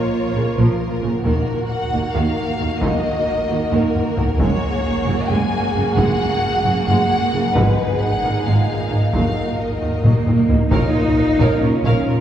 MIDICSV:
0, 0, Header, 1, 9, 480
1, 0, Start_track
1, 0, Key_signature, -6, "minor"
1, 0, Tempo, 451128
1, 1320, Time_signature, 7, 3, 24, 8
1, 12987, End_track
2, 0, Start_track
2, 0, Title_t, "Violin section"
2, 0, Program_c, 0, 48
2, 0, Note_on_c, 0, 73, 69
2, 576, Note_off_c, 0, 73, 0
2, 604, Note_on_c, 0, 70, 62
2, 1323, Note_off_c, 0, 70, 0
2, 1334, Note_on_c, 0, 70, 63
2, 1798, Note_off_c, 0, 70, 0
2, 1799, Note_on_c, 0, 78, 68
2, 2271, Note_off_c, 0, 78, 0
2, 2274, Note_on_c, 0, 77, 68
2, 2997, Note_off_c, 0, 77, 0
2, 2997, Note_on_c, 0, 75, 74
2, 3959, Note_off_c, 0, 75, 0
2, 3969, Note_on_c, 0, 70, 66
2, 4683, Note_on_c, 0, 73, 86
2, 4685, Note_off_c, 0, 70, 0
2, 5623, Note_off_c, 0, 73, 0
2, 5626, Note_on_c, 0, 80, 81
2, 6353, Note_off_c, 0, 80, 0
2, 6357, Note_on_c, 0, 78, 89
2, 7295, Note_off_c, 0, 78, 0
2, 7308, Note_on_c, 0, 78, 84
2, 8020, Note_off_c, 0, 78, 0
2, 8040, Note_on_c, 0, 71, 73
2, 8519, Note_on_c, 0, 78, 76
2, 8520, Note_off_c, 0, 71, 0
2, 8999, Note_on_c, 0, 77, 60
2, 9000, Note_off_c, 0, 78, 0
2, 9698, Note_off_c, 0, 77, 0
2, 9710, Note_on_c, 0, 77, 67
2, 10186, Note_off_c, 0, 77, 0
2, 10196, Note_on_c, 0, 75, 51
2, 11158, Note_off_c, 0, 75, 0
2, 11400, Note_on_c, 0, 77, 53
2, 11624, Note_off_c, 0, 77, 0
2, 11644, Note_on_c, 0, 70, 44
2, 11729, Note_off_c, 0, 70, 0
2, 11887, Note_on_c, 0, 73, 38
2, 11972, Note_off_c, 0, 73, 0
2, 12123, Note_on_c, 0, 77, 54
2, 12345, Note_off_c, 0, 77, 0
2, 12368, Note_on_c, 0, 70, 40
2, 12453, Note_off_c, 0, 70, 0
2, 12604, Note_on_c, 0, 77, 59
2, 12826, Note_off_c, 0, 77, 0
2, 12850, Note_on_c, 0, 70, 49
2, 12935, Note_off_c, 0, 70, 0
2, 12987, End_track
3, 0, Start_track
3, 0, Title_t, "Violin section"
3, 0, Program_c, 1, 48
3, 0, Note_on_c, 1, 65, 39
3, 0, Note_on_c, 1, 70, 40
3, 1282, Note_off_c, 1, 65, 0
3, 1284, Note_off_c, 1, 70, 0
3, 1321, Note_on_c, 1, 66, 42
3, 1324, Note_on_c, 1, 70, 46
3, 4639, Note_off_c, 1, 66, 0
3, 4640, Note_off_c, 1, 70, 0
3, 4692, Note_on_c, 1, 68, 55
3, 4696, Note_on_c, 1, 66, 59
3, 8004, Note_off_c, 1, 68, 0
3, 8006, Note_off_c, 1, 66, 0
3, 8050, Note_on_c, 1, 68, 59
3, 8052, Note_on_c, 1, 63, 56
3, 9692, Note_off_c, 1, 68, 0
3, 9734, Note_on_c, 1, 70, 43
3, 11151, Note_off_c, 1, 63, 0
3, 11165, Note_off_c, 1, 70, 0
3, 11388, Note_on_c, 1, 73, 45
3, 11617, Note_off_c, 1, 73, 0
3, 11645, Note_on_c, 1, 65, 36
3, 11730, Note_off_c, 1, 65, 0
3, 11886, Note_on_c, 1, 70, 37
3, 11971, Note_off_c, 1, 70, 0
3, 12135, Note_on_c, 1, 73, 57
3, 12352, Note_off_c, 1, 73, 0
3, 12368, Note_on_c, 1, 65, 37
3, 12453, Note_off_c, 1, 65, 0
3, 12608, Note_on_c, 1, 73, 49
3, 12828, Note_off_c, 1, 73, 0
3, 12845, Note_on_c, 1, 65, 37
3, 12930, Note_off_c, 1, 65, 0
3, 12987, End_track
4, 0, Start_track
4, 0, Title_t, "French horn section"
4, 0, Program_c, 2, 60
4, 0, Note_on_c, 2, 58, 40
4, 0, Note_on_c, 2, 65, 41
4, 1274, Note_off_c, 2, 58, 0
4, 1276, Note_off_c, 2, 65, 0
4, 1309, Note_on_c, 2, 66, 46
4, 1318, Note_on_c, 2, 58, 41
4, 4632, Note_off_c, 2, 66, 0
4, 4637, Note_off_c, 2, 58, 0
4, 4668, Note_on_c, 2, 68, 60
4, 4671, Note_on_c, 2, 58, 53
4, 7838, Note_off_c, 2, 58, 0
4, 7838, Note_off_c, 2, 68, 0
4, 8019, Note_on_c, 2, 46, 56
4, 8022, Note_on_c, 2, 68, 56
4, 9678, Note_off_c, 2, 68, 0
4, 9716, Note_on_c, 2, 66, 39
4, 11108, Note_off_c, 2, 46, 0
4, 11130, Note_off_c, 2, 66, 0
4, 11412, Note_on_c, 2, 73, 45
4, 11423, Note_on_c, 2, 65, 50
4, 12987, Note_off_c, 2, 65, 0
4, 12987, Note_off_c, 2, 73, 0
4, 12987, End_track
5, 0, Start_track
5, 0, Title_t, "Viola section"
5, 0, Program_c, 3, 48
5, 0, Note_on_c, 3, 58, 41
5, 382, Note_on_c, 3, 49, 42
5, 468, Note_off_c, 3, 49, 0
5, 611, Note_on_c, 3, 53, 49
5, 830, Note_off_c, 3, 53, 0
5, 1090, Note_on_c, 3, 49, 41
5, 1175, Note_off_c, 3, 49, 0
5, 1285, Note_off_c, 3, 58, 0
5, 1320, Note_on_c, 3, 51, 47
5, 1324, Note_on_c, 3, 58, 44
5, 1544, Note_off_c, 3, 51, 0
5, 2042, Note_on_c, 3, 51, 43
5, 2127, Note_off_c, 3, 51, 0
5, 2277, Note_on_c, 3, 51, 56
5, 2502, Note_off_c, 3, 51, 0
5, 2767, Note_on_c, 3, 51, 43
5, 2852, Note_off_c, 3, 51, 0
5, 3003, Note_on_c, 3, 51, 57
5, 3225, Note_off_c, 3, 51, 0
5, 3734, Note_on_c, 3, 51, 49
5, 3819, Note_off_c, 3, 51, 0
5, 3960, Note_on_c, 3, 51, 54
5, 4184, Note_off_c, 3, 51, 0
5, 4439, Note_on_c, 3, 51, 54
5, 4524, Note_off_c, 3, 51, 0
5, 4640, Note_off_c, 3, 58, 0
5, 4681, Note_on_c, 3, 56, 53
5, 4682, Note_on_c, 3, 58, 57
5, 4904, Note_off_c, 3, 56, 0
5, 5405, Note_on_c, 3, 54, 58
5, 5491, Note_off_c, 3, 54, 0
5, 5653, Note_on_c, 3, 56, 66
5, 5871, Note_off_c, 3, 56, 0
5, 6123, Note_on_c, 3, 49, 48
5, 6208, Note_off_c, 3, 49, 0
5, 6372, Note_on_c, 3, 56, 56
5, 6590, Note_off_c, 3, 56, 0
5, 7087, Note_on_c, 3, 54, 53
5, 7173, Note_off_c, 3, 54, 0
5, 7334, Note_on_c, 3, 56, 67
5, 7551, Note_off_c, 3, 56, 0
5, 7809, Note_on_c, 3, 49, 52
5, 7894, Note_off_c, 3, 49, 0
5, 7999, Note_off_c, 3, 58, 0
5, 8055, Note_on_c, 3, 56, 52
5, 8056, Note_off_c, 3, 56, 0
5, 8056, Note_on_c, 3, 56, 58
5, 8272, Note_off_c, 3, 56, 0
5, 8770, Note_on_c, 3, 51, 57
5, 8855, Note_off_c, 3, 51, 0
5, 9014, Note_on_c, 3, 56, 57
5, 9231, Note_off_c, 3, 56, 0
5, 9482, Note_on_c, 3, 51, 44
5, 9567, Note_off_c, 3, 51, 0
5, 9731, Note_on_c, 3, 54, 48
5, 9950, Note_off_c, 3, 54, 0
5, 10446, Note_on_c, 3, 51, 40
5, 10531, Note_off_c, 3, 51, 0
5, 10690, Note_on_c, 3, 54, 44
5, 10909, Note_off_c, 3, 54, 0
5, 11166, Note_on_c, 3, 51, 37
5, 11251, Note_off_c, 3, 51, 0
5, 11389, Note_on_c, 3, 70, 51
5, 11618, Note_off_c, 3, 70, 0
5, 11635, Note_on_c, 3, 70, 40
5, 11720, Note_off_c, 3, 70, 0
5, 11871, Note_on_c, 3, 70, 40
5, 11956, Note_off_c, 3, 70, 0
5, 12127, Note_on_c, 3, 70, 59
5, 12347, Note_off_c, 3, 70, 0
5, 12374, Note_on_c, 3, 70, 43
5, 12459, Note_off_c, 3, 70, 0
5, 12620, Note_on_c, 3, 70, 55
5, 12834, Note_off_c, 3, 70, 0
5, 12855, Note_on_c, 3, 70, 46
5, 12940, Note_off_c, 3, 70, 0
5, 12987, End_track
6, 0, Start_track
6, 0, Title_t, "Trombone section"
6, 0, Program_c, 4, 61
6, 11413, Note_on_c, 4, 58, 42
6, 11420, Note_on_c, 4, 46, 47
6, 12987, Note_off_c, 4, 46, 0
6, 12987, Note_off_c, 4, 58, 0
6, 12987, End_track
7, 0, Start_track
7, 0, Title_t, "Cello section"
7, 0, Program_c, 5, 48
7, 364, Note_on_c, 5, 46, 35
7, 449, Note_off_c, 5, 46, 0
7, 606, Note_on_c, 5, 46, 53
7, 691, Note_off_c, 5, 46, 0
7, 1088, Note_on_c, 5, 46, 37
7, 1173, Note_off_c, 5, 46, 0
7, 1326, Note_on_c, 5, 39, 45
7, 1411, Note_off_c, 5, 39, 0
7, 2044, Note_on_c, 5, 39, 39
7, 2129, Note_off_c, 5, 39, 0
7, 2278, Note_on_c, 5, 39, 54
7, 2363, Note_off_c, 5, 39, 0
7, 2757, Note_on_c, 5, 39, 40
7, 2842, Note_off_c, 5, 39, 0
7, 2993, Note_on_c, 5, 39, 60
7, 3078, Note_off_c, 5, 39, 0
7, 3713, Note_on_c, 5, 39, 44
7, 3798, Note_off_c, 5, 39, 0
7, 3961, Note_on_c, 5, 39, 63
7, 4046, Note_off_c, 5, 39, 0
7, 4440, Note_on_c, 5, 39, 47
7, 4526, Note_off_c, 5, 39, 0
7, 4681, Note_on_c, 5, 42, 64
7, 4767, Note_off_c, 5, 42, 0
7, 5404, Note_on_c, 5, 42, 47
7, 5489, Note_off_c, 5, 42, 0
7, 5635, Note_on_c, 5, 42, 67
7, 5720, Note_off_c, 5, 42, 0
7, 6124, Note_on_c, 5, 42, 48
7, 6209, Note_off_c, 5, 42, 0
7, 6359, Note_on_c, 5, 42, 73
7, 6444, Note_off_c, 5, 42, 0
7, 7082, Note_on_c, 5, 42, 48
7, 7167, Note_off_c, 5, 42, 0
7, 7316, Note_on_c, 5, 42, 68
7, 7401, Note_off_c, 5, 42, 0
7, 7795, Note_on_c, 5, 42, 50
7, 7880, Note_off_c, 5, 42, 0
7, 8036, Note_on_c, 5, 44, 70
7, 8122, Note_off_c, 5, 44, 0
7, 8765, Note_on_c, 5, 44, 43
7, 8851, Note_off_c, 5, 44, 0
7, 9007, Note_on_c, 5, 44, 63
7, 9092, Note_off_c, 5, 44, 0
7, 9489, Note_on_c, 5, 44, 39
7, 9574, Note_off_c, 5, 44, 0
7, 9726, Note_on_c, 5, 39, 47
7, 9812, Note_off_c, 5, 39, 0
7, 10449, Note_on_c, 5, 39, 33
7, 10535, Note_off_c, 5, 39, 0
7, 10680, Note_on_c, 5, 39, 50
7, 10684, Note_on_c, 5, 58, 58
7, 10766, Note_off_c, 5, 39, 0
7, 11163, Note_on_c, 5, 39, 33
7, 11248, Note_off_c, 5, 39, 0
7, 11360, Note_off_c, 5, 58, 0
7, 11401, Note_on_c, 5, 63, 74
7, 12342, Note_off_c, 5, 63, 0
7, 12358, Note_on_c, 5, 61, 60
7, 12987, Note_off_c, 5, 61, 0
7, 12987, End_track
8, 0, Start_track
8, 0, Title_t, "Double bass section"
8, 0, Program_c, 6, 48
8, 354, Note_on_c, 6, 34, 31
8, 439, Note_off_c, 6, 34, 0
8, 600, Note_on_c, 6, 34, 50
8, 685, Note_off_c, 6, 34, 0
8, 1082, Note_on_c, 6, 34, 33
8, 1167, Note_off_c, 6, 34, 0
8, 1329, Note_on_c, 6, 39, 52
8, 1414, Note_off_c, 6, 39, 0
8, 2035, Note_on_c, 6, 39, 38
8, 2120, Note_off_c, 6, 39, 0
8, 2274, Note_on_c, 6, 39, 56
8, 2359, Note_off_c, 6, 39, 0
8, 2757, Note_on_c, 6, 39, 38
8, 2842, Note_off_c, 6, 39, 0
8, 3000, Note_on_c, 6, 39, 56
8, 3085, Note_off_c, 6, 39, 0
8, 3716, Note_on_c, 6, 39, 43
8, 3801, Note_off_c, 6, 39, 0
8, 3956, Note_on_c, 6, 39, 63
8, 4041, Note_off_c, 6, 39, 0
8, 4438, Note_on_c, 6, 39, 42
8, 4523, Note_off_c, 6, 39, 0
8, 4670, Note_on_c, 6, 30, 70
8, 4755, Note_off_c, 6, 30, 0
8, 5388, Note_on_c, 6, 30, 48
8, 5473, Note_off_c, 6, 30, 0
8, 5627, Note_on_c, 6, 30, 73
8, 5712, Note_off_c, 6, 30, 0
8, 6108, Note_on_c, 6, 30, 46
8, 6194, Note_off_c, 6, 30, 0
8, 6345, Note_on_c, 6, 30, 66
8, 6430, Note_off_c, 6, 30, 0
8, 7069, Note_on_c, 6, 30, 51
8, 7154, Note_off_c, 6, 30, 0
8, 7307, Note_on_c, 6, 30, 71
8, 7393, Note_off_c, 6, 30, 0
8, 7793, Note_on_c, 6, 30, 43
8, 7878, Note_off_c, 6, 30, 0
8, 8030, Note_on_c, 6, 32, 66
8, 8115, Note_off_c, 6, 32, 0
8, 8753, Note_on_c, 6, 32, 45
8, 8839, Note_off_c, 6, 32, 0
8, 9003, Note_on_c, 6, 32, 64
8, 9088, Note_off_c, 6, 32, 0
8, 9470, Note_on_c, 6, 32, 38
8, 9555, Note_off_c, 6, 32, 0
8, 9718, Note_on_c, 6, 39, 52
8, 9803, Note_off_c, 6, 39, 0
8, 10440, Note_on_c, 6, 39, 32
8, 10525, Note_off_c, 6, 39, 0
8, 10680, Note_on_c, 6, 39, 50
8, 10765, Note_off_c, 6, 39, 0
8, 11156, Note_on_c, 6, 39, 30
8, 11241, Note_off_c, 6, 39, 0
8, 11398, Note_on_c, 6, 34, 58
8, 11483, Note_off_c, 6, 34, 0
8, 11641, Note_on_c, 6, 34, 41
8, 11726, Note_off_c, 6, 34, 0
8, 11872, Note_on_c, 6, 34, 40
8, 11957, Note_off_c, 6, 34, 0
8, 12111, Note_on_c, 6, 34, 53
8, 12196, Note_off_c, 6, 34, 0
8, 12362, Note_on_c, 6, 34, 45
8, 12447, Note_off_c, 6, 34, 0
8, 12596, Note_on_c, 6, 34, 62
8, 12681, Note_off_c, 6, 34, 0
8, 12846, Note_on_c, 6, 34, 37
8, 12931, Note_off_c, 6, 34, 0
8, 12987, End_track
9, 0, Start_track
9, 0, Title_t, "Taiko and cinematic ensemble drums"
9, 1321, Note_on_c, 9, 41, 48
9, 1427, Note_off_c, 9, 41, 0
9, 2045, Note_on_c, 9, 41, 33
9, 2151, Note_off_c, 9, 41, 0
9, 2994, Note_on_c, 9, 41, 72
9, 3101, Note_off_c, 9, 41, 0
9, 3956, Note_on_c, 9, 45, 62
9, 4062, Note_off_c, 9, 45, 0
9, 4195, Note_on_c, 9, 45, 63
9, 4301, Note_off_c, 9, 45, 0
9, 4435, Note_on_c, 9, 43, 72
9, 4541, Note_off_c, 9, 43, 0
9, 4675, Note_on_c, 9, 41, 70
9, 4781, Note_off_c, 9, 41, 0
9, 6357, Note_on_c, 9, 41, 79
9, 6463, Note_off_c, 9, 41, 0
9, 8035, Note_on_c, 9, 41, 88
9, 8142, Note_off_c, 9, 41, 0
9, 9720, Note_on_c, 9, 41, 68
9, 9826, Note_off_c, 9, 41, 0
9, 10680, Note_on_c, 9, 47, 63
9, 10786, Note_off_c, 9, 47, 0
9, 10922, Note_on_c, 9, 47, 70
9, 11028, Note_off_c, 9, 47, 0
9, 11158, Note_on_c, 9, 43, 73
9, 11264, Note_off_c, 9, 43, 0
9, 11397, Note_on_c, 9, 41, 78
9, 11503, Note_off_c, 9, 41, 0
9, 12121, Note_on_c, 9, 41, 73
9, 12228, Note_off_c, 9, 41, 0
9, 12600, Note_on_c, 9, 41, 65
9, 12706, Note_off_c, 9, 41, 0
9, 12987, End_track
0, 0, End_of_file